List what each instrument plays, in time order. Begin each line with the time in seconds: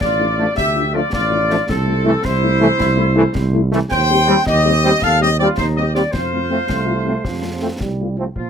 0.01 tuba A1, flute section F4, woodwind section D5, trumpet section D5, concert bass drum, snare
0.19 french horn section A3 D4 F4
0.38 trombone section F3 A3, french horn section A3 D4 F4
0.55 tuba D2, flute section G4, woodwind section E5, trumpet section E5, concert bass drum, snare
0.75 french horn section A3 D4 F4
0.93 trombone section F3 A3, french horn section A3 D4 F4, flute section F4, woodwind section D5, trumpet section D5
1.12 tuba A1, flute section F4, woodwind section D5, trumpet section D5, concert bass drum, snare
1.31 french horn section A3 D4 F4
1.49 trombone section F3 A3, french horn section A3 D4 F4, snare
1.68 tuba C2, flute section C4, woodwind section A4, trumpet section A4, concert bass drum, snare
1.87 french horn section A3 E4
2.04 trombone section E3 A3, french horn section A3 E4
2.24 tuba C2, flute section E4, woodwind section C5, trumpet section C5, concert bass drum, snare
2.42 french horn section A3 E4
2.60 trombone section E3 A3, french horn section A3 E4
2.80 tuba C2, concert bass drum, snare
2.96 french horn section A3 E4
3.16 trombone section E3 A3, french horn section A3 E4
3.35 tuba C2, concert bass drum, snare
3.53 french horn section A3 E4
3.71 trombone section E3 A3, french horn section A3 E4, snare
3.90 tuba D#2, flute section C5, trumpet section G5, woodwind section G5, concert bass drum, snare, crash
4.10 french horn section G3 C4 G4
4.28 trombone section G3 C4, french horn section G3 C4 G4
4.46 tuba D#2, flute section G4, trumpet section D#5, woodwind section D#5, concert bass drum, snare
4.66 french horn section G3 C4 G4
4.84 trombone section G3 C4, french horn section G3 C4 G4
5.01 tuba D#2, flute section A4, trumpet section F5, woodwind section F5, concert bass drum, snare
5.21 french horn section G3 C4 G4, flute section G4, woodwind section D#5, trumpet section D#5
5.39 trombone section G3 C4, french horn section G3 C4 G4, flute section F4, woodwind section D5, trumpet section D5
5.57 tuba D#2, flute section D#4, trumpet section C5, woodwind section C5, concert bass drum, snare
5.76 french horn section G3 C4 G4, flute section G4, trumpet section D#5, woodwind section D#5
5.94 french horn section G3 C4 G4, trombone section G3 C4, flute section F4, trumpet section D5, woodwind section D5, snare
6.12 tuba F2, flute section F4, woodwind section C5, trumpet section C5, concert bass drum, snare
6.32 french horn section A3 C4 F4
6.50 french horn section A3 C4 F4, trombone section A3 C4
6.69 tuba C2, euphonium A3, concert bass drum, snare
6.86 french horn section A3 C4 F4
7.05 french horn section A3 C4 F4, trombone section A3 C4
7.24 tuba F2, euphonium F3, concert bass drum, snare
7.43 french horn section A3 C4 F4
7.61 trombone section A3 C4, french horn section A3 C4 F4
7.80 tuba C2, euphonium G3, concert bass drum, snare
8.00 french horn section A3 C4 F4
8.18 euphonium F3, trombone section A3 C4, french horn section A3 C4 F4
8.36 tuba A#2, euphonium F3, woodwind section F4, concert bass drum